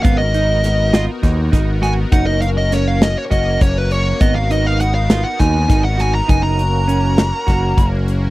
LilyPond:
<<
  \new Staff \with { instrumentName = "Lead electric guitar" } { \time 7/8 \key gis \dorian \tempo 4 = 101 eis''16 dis''4. r4 r16 gis''8 | fis''16 dis''16 eis''16 dis''16 cis''16 eis''16 dis''16 cis''16 dis''8 cis''16 b'16 cis''8 | dis''16 eis''16 dis''16 eis''16 fis''16 eis''8 fis''16 gis''8. fis''16 gis''16 ais''16 | gis''16 ais''2~ ais''8 r8. | }
  \new Staff \with { instrumentName = "Analog synth pad" } { \time 7/8 \key gis \dorian <b dis' fis' ais'>2.~ <b dis' fis' ais'>8 | <ais cis' fis' ais'>2.~ <ais cis' fis' ais'>8 | <b dis' fis' ais'>2.~ <b dis' fis' ais'>8 | <ais cis' fis' ais'>2.~ <ais cis' fis' ais'>8 | }
  \new Staff \with { instrumentName = "Clean electric guitar" } { \time 7/8 \key gis \dorian b8 dis'4 eis'8 dis'8 dis'8 fis'8 | dis'4 cis'4 fis'4 r8 | b8 dis'4 eis'8 dis'8 dis'8 fis'8 | dis'4 cis'4 fis'4 r8 | }
  \new Staff \with { instrumentName = "Picked electric bass" } { \clef bass \time 7/8 \key gis \dorian gis,,2 dis,8 gis,,4 | fis,,2 fis,,8 fis,,4 | gis,,2 dis,8 gis,,4 | fis,,2 fis,,8 fis,,4 | }
  \new DrumStaff \with { instrumentName = "Drums" } \drummode { \time 7/8 <hh bd>8 hh8 <hh sn>8 <hh sn>8 <hh bd sn>8 <hh bd sn>8 <hh sn>8 | <hh bd>8 hh8 <hh sn>8 <hh sn>8 <hh bd>8 <hh bd>8 hh8 | <hh bd>8 hh8 hh8 <hh sn>8 <hh bd sn>8 <hh bd sn>8 <hh sn>8 | <hh bd>8 hh8 hh8 <hh sn>8 <hh bd sn>8 <hh bd>8 hh8 | }
>>